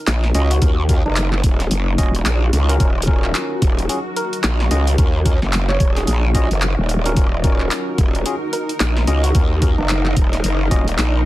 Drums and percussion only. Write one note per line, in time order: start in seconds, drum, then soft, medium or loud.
0.07 clap loud
0.07 closed hi-hat medium
0.24 snare soft
0.35 closed hi-hat medium
0.51 closed hi-hat medium
0.62 kick loud
0.62 closed hi-hat medium
0.89 kick loud
0.89 closed hi-hat medium
1.16 clap loud
1.16 closed hi-hat medium
1.33 clap soft
1.44 kick loud
1.44 closed hi-hat medium
1.60 snare soft
1.60 closed hi-hat soft
1.71 closed hi-hat medium
1.98 kick medium
1.98 closed hi-hat medium
2.15 closed hi-hat soft
2.26 clap loud
2.26 closed hi-hat medium
2.53 closed hi-hat medium
2.69 closed hi-hat medium
2.80 kick loud
2.80 closed hi-hat medium
3.02 closed hi-hat medium
3.07 kick loud
3.24 clap soft
3.35 clap loud
3.35 closed hi-hat medium
3.62 kick loud
3.62 closed hi-hat medium
3.79 closed hi-hat soft
3.89 closed hi-hat medium
4.17 closed hi-hat medium
4.33 closed hi-hat soft
4.44 clap loud
4.44 closed hi-hat medium
4.60 snare soft
4.71 closed hi-hat medium
4.87 closed hi-hat medium
4.98 kick loud
4.98 closed hi-hat medium
5.26 kick loud
5.26 closed hi-hat medium
5.42 snare soft
5.53 clap loud
5.53 closed hi-hat medium
5.69 clap soft
5.80 kick loud
5.80 closed hi-hat medium
5.97 snare soft
5.97 closed hi-hat soft
6.07 closed hi-hat medium
6.35 kick medium
6.35 closed hi-hat medium
6.51 closed hi-hat soft
6.62 clap loud
6.62 closed hi-hat medium
6.89 closed hi-hat medium
7.06 closed hi-hat medium
7.16 kick loud
7.16 closed hi-hat medium
7.44 kick loud
7.44 closed hi-hat medium
7.60 clap soft
7.71 clap loud
7.71 closed hi-hat medium
7.98 kick loud
7.98 closed hi-hat medium
8.15 closed hi-hat soft
8.26 closed hi-hat medium
8.53 closed hi-hat medium
8.69 closed hi-hat soft
8.80 clap loud
8.80 closed hi-hat medium
8.96 snare soft
9.07 closed hi-hat medium
9.24 closed hi-hat medium
9.35 kick loud
9.35 closed hi-hat medium
9.62 kick loud
9.62 closed hi-hat medium
9.89 clap loud
9.89 closed hi-hat medium
10.06 clap soft
10.17 kick loud
10.17 closed hi-hat medium
10.33 snare soft
10.33 closed hi-hat soft
10.44 closed hi-hat medium
10.71 kick medium
10.71 closed hi-hat medium
10.88 closed hi-hat soft
10.98 clap loud
10.98 closed hi-hat medium